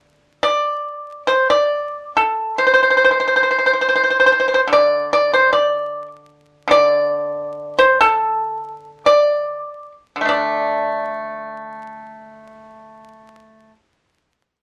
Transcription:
Already playing: D3
0.43 D5
1.27 C5
1.50 D5
2.17 A4
2.58 C5
2.67 C5
2.74 C5
2.83 C5
2.90 C5
2.97 C5
3.04 C5
3.11 C5
3.20 C5
3.28 C5
3.36 C5
3.43 C5
3.51 C5
3.58 C5
3.66 C5
3.73 C5
3.81 C5
3.88 C5
3.95 C5
4.03 C5
4.10 C5
4.20 C5
4.26 C5
4.32 C5
4.40 C5
4.48 C5
4.54 C5
4.67 D3
4.73 D5
5.13 D5
5.33 C5
5.53 D5
6.68 D3 D5
7.79 C5
8.01 A4
9.06 D5
10.16 D3
10.21 A3
10.25 D4 D5

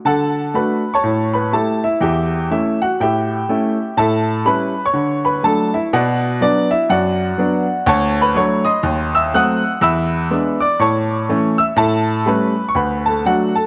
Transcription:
0.05 D3 A4 F#5 A5
0.54 A3 D4 F#4 B4 B5
0.94 C#5 A5 C#6
1.04 A2
1.33 B4 B5
1.53 A3 E4 G4 A4 A5
1.84 E4 E5
2.01 E2 G4 E5 G5
2.51 A3 C#4 E4 E5
2.82 F#4 F#5
3.00 A2 G4 E5 G5
3.49 A3 C#4 E4
3.97 A2 A4 E5 A5
4.45 G3 C#4 E4 B4 B5
4.86 C#5 C#6
4.93 D3
5.25 B4 B5
5.43 F#3 A3 D4 A4 A5
5.74 E4 E5
5.93 B2 F#4 D5 F#5
6.41 F#3 B3 D4 D5
6.71 E4 E5
6.89 F#2 F#4 D5 F#5
7.38 F#3 B3 D4
7.86 D2 C#5 A5 C#6
8.21 B4 B5
8.35 F#3 A3 D4 C#5 C#6
8.65 D#5 C6 D#6
8.83 D#2
9.15 E5 E6
9.34 F#3 A3 C4 F#5 D#6 F#6
9.81 E2 E5 B5 E6
10.31 G#3 B3 D4
10.60 D5 D6
10.79 A2 C#5 A5 C#6
11.29 E3 A3 C#4
11.58 E5 E6
11.76 A2 A4 E5 A5
12.26 G3 A3 C#4 B4 B5
12.69 C#6
12.75 D2 B4 B5
13.06 A4 A5
13.25 F#3 A3 D4 F#4 F#5
13.56 A4 A5

